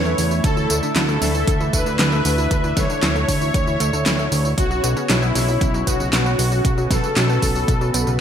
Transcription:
Already playing: analog synth bass E2, analog synth pad A3 C#4 E4 B4, supersaw synth C#5
0.05 synth arpeggio sound A3, tambourine
0.18 analog synth bass E2, synth arpeggio sound C#3, open hi-hat, tambourine
0.31 synth arpeggio sound E3, tambourine
0.44 analog synth bass D2, synth arpeggio sound D3, analog synth pad D4 E5, supersaw synth A4, kick, closed hi-hat, tambourine
0.57 synth arpeggio sound E3, tambourine
0.70 analog synth bass D2, synth arpeggio sound A3, closed hi-hat, tambourine
0.83 synth arpeggio sound D3, tambourine
0.96 analog synth bass D2, synth arpeggio sound E3, supersaw synth A4, snare, clap, closed hi-hat, tambourine
1.09 synth arpeggio sound A3, tambourine
1.22 analog synth bass D2, synth arpeggio sound D3, snare, open hi-hat, tambourine
1.35 synth arpeggio sound E3, tambourine
1.47 analog synth bass D2, synth arpeggio sound D3, kick, closed hi-hat, tambourine
1.60 synth arpeggio sound E3, tambourine
1.73 analog synth bass D2, synth arpeggio sound A3, supersaw synth B4, kick, closed hi-hat, tambourine
1.86 analog synth bass D2, synth arpeggio sound D3, tambourine
1.99 analog synth bass D2, synth arpeggio sound E3, snare, clap, closed hi-hat, tambourine
2.12 synth arpeggio sound A3, tambourine
2.25 analog synth bass D2, synth arpeggio sound D3, open hi-hat, tambourine
2.38 synth arpeggio sound E3, tambourine
2.51 analog synth bass D2, synth arpeggio sound D3, kick, closed hi-hat, tambourine
2.64 synth arpeggio sound E3, tambourine
2.77 analog synth bass D2, synth arpeggio sound A3, supersaw synth C#5, kick, snare, closed hi-hat, tambourine
2.90 synth arpeggio sound D3, tambourine
3.03 analog synth bass D2, synth arpeggio sound E3, snare, clap, closed hi-hat, tambourine
3.16 synth arpeggio sound A3, tambourine
3.28 analog synth bass D2, synth arpeggio sound D3, kick, open hi-hat, tambourine
3.41 synth arpeggio sound E3, tambourine
3.54 analog synth bass D2, synth arpeggio sound D3, kick, closed hi-hat, tambourine
3.67 synth arpeggio sound E3, tambourine
3.80 analog synth bass D2, synth arpeggio sound A3, closed hi-hat, tambourine
3.93 analog synth bass D2, synth arpeggio sound D3, tambourine
4.06 analog synth bass D2, synth arpeggio sound E3, snare, clap, closed hi-hat, tambourine
4.19 synth arpeggio sound A3, tambourine
4.32 analog synth bass D2, synth arpeggio sound D3, open hi-hat, tambourine
4.45 synth arpeggio sound E3, tambourine
4.58 analog synth bass B1, synth arpeggio sound C#3, analog synth pad B3 C#4 F#4 C#5, supersaw synth F#4, kick, closed hi-hat, tambourine
4.71 synth arpeggio sound F#3, tambourine
4.84 analog synth bass B1, synth arpeggio sound B3, closed hi-hat, tambourine
4.97 synth arpeggio sound C#3, tambourine
5.09 analog synth bass B1, synth arpeggio sound F#3, supersaw synth E4, snare, clap, closed hi-hat, tambourine
5.22 synth arpeggio sound B3, tambourine
5.35 analog synth bass B1, synth arpeggio sound C#3, snare, open hi-hat, tambourine
5.48 synth arpeggio sound F#3, tambourine
5.61 analog synth bass B1, synth arpeggio sound C#3, kick, closed hi-hat, tambourine
5.74 synth arpeggio sound F#3, tambourine
5.87 analog synth bass B1, synth arpeggio sound B3, supersaw synth F#4, kick, closed hi-hat, tambourine
6.00 analog synth bass B1, synth arpeggio sound C#3, tambourine
6.13 analog synth bass B1, synth arpeggio sound F#3, snare, clap, closed hi-hat, tambourine
6.26 synth arpeggio sound B3, tambourine
6.39 analog synth bass B1, synth arpeggio sound C#3, open hi-hat, tambourine
6.52 synth arpeggio sound F#3, tambourine
6.65 analog synth bass B1, synth arpeggio sound C#3, analog synth pad B4, kick, closed hi-hat, tambourine
6.78 synth arpeggio sound F#3, tambourine
6.91 analog synth bass B1, synth arpeggio sound B3, supersaw synth A4, kick, snare, closed hi-hat, tambourine
7.03 synth arpeggio sound C#3, tambourine
7.16 analog synth bass B1, synth arpeggio sound F#3, snare, clap, closed hi-hat, tambourine
7.29 synth arpeggio sound B3, tambourine
7.42 analog synth bass B1, synth arpeggio sound C#3, kick, open hi-hat, tambourine
7.55 synth arpeggio sound F#3, tambourine
7.68 analog synth bass B1, synth arpeggio sound C#3, kick, closed hi-hat, tambourine
7.81 synth arpeggio sound F#3, tambourine
7.94 analog synth bass B1, synth arpeggio sound B3, closed hi-hat, tambourine
8.07 analog synth bass B1, synth arpeggio sound C#3, tambourine

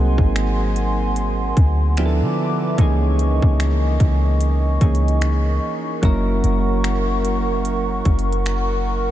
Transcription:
Already playing: 808-style bass C2, synth keys F#3 A#3 C4 D#4 G#4, analog synth pad A#4 F#5 G#5 C6
0.18 808-style bass G#1, kick
0.36 finger snap, closed hi-hat
0.76 closed hi-hat
1.16 closed hi-hat
1.57 808-style bass D2, kick, closed hi-hat
1.97 synth keys F3 B3 D4 E4 G4, analog synth pad B4 E5 D6, finger snap, closed hi-hat
2.06 synth keys A4
2.22 808-style bass D3
2.78 808-style bass C#2, synth keys E3 A#3 C#4 D#4 G#4, analog synth pad A#4 D#5 C#6, kick, closed hi-hat
3.19 closed hi-hat
3.42 808-style bass C#2, kick
3.60 finger snap, closed hi-hat
4.00 808-style bass C#2, kick, closed hi-hat
4.41 closed hi-hat
4.81 808-style bass C#2, synth keys E3 A#3 C#4 D#4 G#4, kick, closed hi-hat
4.95 closed hi-hat
5.08 closed hi-hat
5.22 finger snap, closed hi-hat
6.02 808-style bass F#1, synth keys F#3 A#3 C#4 E4 A#4, analog synth pad F#5, kick, closed hi-hat
6.44 808-style bass F#1, closed hi-hat
6.84 finger snap, closed hi-hat
7.25 closed hi-hat
7.65 closed hi-hat
8.05 808-style bass F#1, kick, closed hi-hat
8.19 closed hi-hat
8.33 closed hi-hat
8.46 finger snap, closed hi-hat

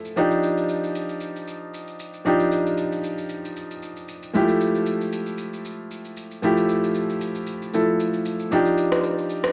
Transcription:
Already playing: grand piano F3 A3 E4 A4
0.05 shaker
0.16 grand piano F3 D4 D#4 G4, shaker
0.31 shaker
0.43 shaker
0.57 shaker
0.69 shaker
0.84 shaker
0.95 shaker
1.09 shaker
1.21 shaker
1.36 shaker
1.48 shaker
1.74 shaker
1.88 shaker
1.99 shaker
2.14 shaker
2.25 grand piano F3 D4 D#4 G4, shaker
2.40 shaker
2.52 shaker
2.66 shaker
2.78 shaker
2.92 shaker
3.04 shaker
3.18 shaker
3.29 shaker
3.45 shaker
3.56 shaker
3.71 shaker
3.83 shaker
3.96 shaker
4.08 shaker
4.22 shaker
4.33 grand piano F3 G#3 E4 G4, shaker
4.41 grand piano A3
4.48 shaker
4.60 shaker
4.75 shaker
4.86 shaker
5.01 shaker
5.12 shaker
5.26 shaker
5.38 shaker
5.53 shaker
5.65 shaker
5.91 shaker
6.05 shaker
6.17 shaker
6.31 shaker
6.42 grand piano F3 A3 E4 G4, shaker
6.57 shaker
6.69 shaker
6.84 shaker
6.95 shaker
7.09 shaker
7.21 shaker
7.35 shaker
7.47 shaker
7.62 shaker
7.73 grand piano F3 A3 E4 A4, shaker
8.00 shaker
8.13 shaker
8.25 shaker
8.40 shaker
8.51 grand piano F3 D4 D#4 G4, shaker
8.65 shaker
8.77 shaker
8.92 cross-stick, shaker
9.03 shaker
9.18 shaker
9.30 shaker
9.44 cross-stick, shaker

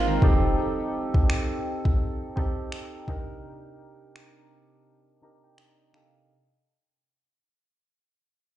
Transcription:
Already playing: 808-style bass G#1, analog synth pad G#3 C4 F4, synth keys A#3 C4 D#4 F4 A#4
0.07 steel-string acoustic guitar D#3 C4
0.22 808-style bass F1, analog synth pad F3 D#4 A4, synth keys C4 D#4 G4 A4, kick
1.14 kick
1.30 finger snap
1.85 kick
2.36 synth keys C4 D#4 G4 A4, kick
2.72 finger snap
3.07 synth keys C3 D4 D#4 G4 A#4, kick
4.16 finger snap
5.22 synth keys C3 D4 D#4 G4 A#4 A#5
5.44 synth keys G5
5.58 synth keys D#5, finger snap
5.93 synth keys C3 D4 D#4 G4 A4 F5, finger snap

